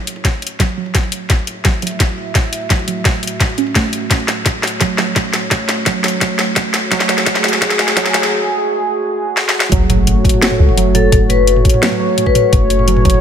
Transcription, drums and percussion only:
0.07 closed hi-hat medium
0.16 mid tom medium
0.25 kick medium
0.25 snare medium
0.25 closed hi-hat medium
0.42 closed hi-hat soft
0.42 mid tom medium
0.47 closed hi-hat medium
0.60 kick loud
0.60 snare medium
0.60 closed hi-hat medium
0.60 mid tom medium
0.86 mid tom medium
0.95 kick medium
0.95 snare medium
0.95 closed hi-hat medium
1.03 mid tom medium
1.12 closed hi-hat medium
1.30 kick loud
1.30 snare medium
1.30 closed hi-hat medium
1.47 closed hi-hat medium
1.47 mid tom medium
1.65 kick loud
1.65 snare medium
1.65 closed hi-hat medium
1.74 mid tom medium
1.82 closed hi-hat soft
1.87 closed hi-hat medium
1.91 mid tom medium
2.00 kick medium
2.00 snare medium
2.00 closed hi-hat medium
2.18 mid tom medium
2.35 kick medium
2.35 snare medium
2.35 closed hi-hat medium
2.35 mid tom medium
2.53 closed hi-hat medium
2.61 mid tom soft
2.70 kick loud
2.70 snare medium
2.70 closed hi-hat medium
2.79 mid tom medium
2.88 closed hi-hat medium
3.05 kick loud
3.05 snare medium
3.05 closed hi-hat medium
3.23 closed hi-hat soft
3.23 mid tom medium
3.27 closed hi-hat medium
3.40 kick loud
3.40 snare medium
3.40 closed hi-hat medium
3.49 mid tom soft
3.58 closed hi-hat soft
3.67 mid tom medium
3.75 kick medium
3.75 snare medium
3.75 closed hi-hat medium
3.93 closed hi-hat medium
3.93 mid tom medium
4.10 kick medium
4.10 snare medium
4.10 closed hi-hat medium
4.28 snare medium
4.28 closed hi-hat medium
4.46 kick loud
4.46 snare medium
4.46 closed hi-hat medium
4.46 mid tom medium
4.63 snare medium
4.63 closed hi-hat soft
4.68 closed hi-hat medium
4.72 mid tom soft
4.81 kick medium
4.81 snare medium
4.81 closed hi-hat medium
4.90 mid tom medium
4.98 snare medium
5.16 kick loud
5.16 snare medium
5.16 closed hi-hat medium
5.33 snare medium
5.33 closed hi-hat medium
5.33 mid tom medium
5.51 kick loud
5.51 snare medium
5.51 closed hi-hat medium
5.60 mid tom medium
5.69 snare medium
5.69 closed hi-hat medium
5.78 mid tom medium
5.86 kick loud
5.86 snare medium
5.86 closed hi-hat medium
6.04 snare medium
6.04 closed hi-hat soft
6.08 closed hi-hat medium
6.21 kick loud
6.21 snare medium
6.21 closed hi-hat medium
6.39 snare medium
6.48 mid tom medium
6.56 kick loud
6.56 snare medium
6.56 closed hi-hat medium
6.65 mid tom medium
6.74 snare medium
6.74 closed hi-hat medium
6.91 kick loud
6.91 snare medium
6.91 closed hi-hat medium
7.00 snare medium
7.09 snare medium
7.09 closed hi-hat medium
7.09 mid tom medium
7.18 snare medium
7.26 kick loud
7.26 snare medium
7.26 closed hi-hat medium
7.35 snare medium
7.44 snare loud
7.44 closed hi-hat medium
7.48 closed hi-hat medium
7.53 snare medium
7.53 mid tom medium
7.61 kick loud
7.61 snare medium
7.61 closed hi-hat medium
7.70 snare medium
7.79 snare loud
7.88 snare medium
7.97 kick loud
7.97 snare medium
7.97 closed hi-hat medium
8.06 snare medium
8.14 snare loud
8.14 closed hi-hat medium
8.23 snare medium
9.37 snare medium
9.49 snare medium
9.60 snare loud
9.72 kick loud
9.72 closed hi-hat medium
9.72 mid tom medium
9.90 closed hi-hat medium
9.90 mid tom medium
10.07 closed hi-hat medium
10.07 mid tom medium
10.25 kick loud
10.25 closed hi-hat soft
10.29 closed hi-hat medium
10.34 mid tom medium
10.42 snare loud
10.42 closed hi-hat medium
10.51 mid tom medium
10.69 mid tom medium
10.78 closed hi-hat medium
10.95 closed hi-hat medium
10.95 mid tom medium
11.12 kick loud
11.12 closed hi-hat medium
11.12 mid tom medium
11.30 closed hi-hat medium
11.30 mid tom medium
11.47 closed hi-hat medium
11.56 mid tom medium
11.65 kick loud
11.65 closed hi-hat medium
11.70 closed hi-hat medium
11.74 mid tom medium
11.83 snare loud
11.83 closed hi-hat medium
11.92 mid tom medium
12.18 closed hi-hat medium
12.18 mid tom medium
12.26 kick medium
12.35 closed hi-hat medium
12.35 mid tom medium
12.53 kick loud
12.53 closed hi-hat medium
12.53 mid tom medium
12.70 closed hi-hat medium
12.79 mid tom medium
12.88 closed hi-hat medium
12.97 mid tom medium
13.05 kick loud
13.05 closed hi-hat medium
13.10 closed hi-hat medium
13.14 mid tom medium

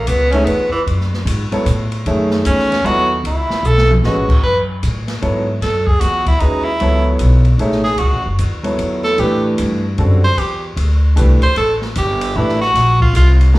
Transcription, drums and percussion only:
0.07 hi-hat pedal medium
0.07 ride medium
0.32 ride medium
0.47 ride medium
0.87 ride medium
1.00 snare soft
1.13 snare soft
1.27 hi-hat pedal medium
1.27 ride medium
1.52 ride soft
1.66 hi-hat pedal medium
1.66 ride medium
1.92 ride soft
2.06 ride medium
2.31 snare medium
2.45 hi-hat pedal medium
2.45 ride medium
2.59 snare soft
2.72 snare medium
2.72 ride medium
2.86 ride medium
3.25 ride medium
3.50 snare medium
3.64 hi-hat pedal medium
3.78 snare medium
3.90 mid tom medium
4.03 snare medium
4.29 kick medium
4.29 crash medium
4.83 hi-hat pedal medium
4.83 ride medium
5.08 snare medium
5.08 ride medium
5.22 ride soft
5.62 snare soft
5.62 ride medium
5.87 kick medium
6.00 snare soft
6.00 hi-hat pedal medium
6.00 ride medium
6.26 kick medium
6.26 ride medium
6.40 ride medium
6.80 ride medium
7.19 hi-hat pedal medium
7.19 ride medium
7.45 ride soft
7.59 ride medium
7.72 snare soft
7.84 snare soft
7.98 ride medium
8.38 hi-hat pedal medium
8.38 ride medium
8.64 ride soft
8.79 ride medium
9.04 snare soft
9.18 ride medium
9.58 hi-hat pedal medium
9.58 ride medium
9.98 ride medium
10.38 ride medium
10.77 ride medium
11.17 hi-hat pedal medium
11.17 ride medium
11.42 kick soft
11.42 ride soft
11.56 ride medium
11.81 snare soft
11.95 hi-hat pedal medium
11.95 ride medium
12.21 ride medium
12.49 snare soft
12.61 snare soft
12.75 snare soft
12.75 ride medium
13.00 kick medium
13.15 hi-hat pedal medium
13.15 ride medium
13.41 ride medium
13.54 snare soft

